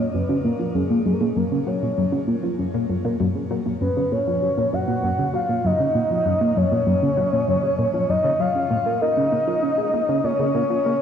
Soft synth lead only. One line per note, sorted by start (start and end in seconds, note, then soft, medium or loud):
0.00 0.16 C#5 loud
0.14 0.44 B4 medium
0.44 0.76 A#4 medium
0.74 1.05 G#4 medium
1.06 1.15 G#4 medium
1.13 1.21 A#4 medium
1.20 1.38 G#4 medium
1.37 1.69 A#4 medium
1.67 2.59 C#5 medium
3.81 4.14 B4 loud
4.12 4.75 C#5 loud
4.74 5.36 F#5 loud
5.35 5.67 F5 loud
5.66 6.58 D#5 loud
6.57 8.11 C#5 loud
8.10 8.42 D#5 loud
8.40 9.01 F5 loud
9.01 10.26 D#5 loud
10.24 10.54 C#5 loud
10.55 11.02 C#5 loud